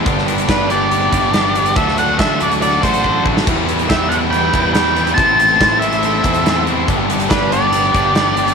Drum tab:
CC |----------------|----------------|x---------------|----------------|
HH |x-xxx-x-x-x-x-xx|x-x-x-xxx-xx----|x-xxx-x-x-x-x-xx|x-x-x-xxx-xxx-x-|
SD |-o--o-------o---|-o--o----------o|----o-------o---|----o-------o---|
BD |o---o-----o-----|o---o-----o-o-o-|o---o-----o-----|o---o-----o-----|

CC |----------------|
HH |x-xxx-x-x-x-x-xx|
SD |----o-------o---|
BD |o---o-----o-----|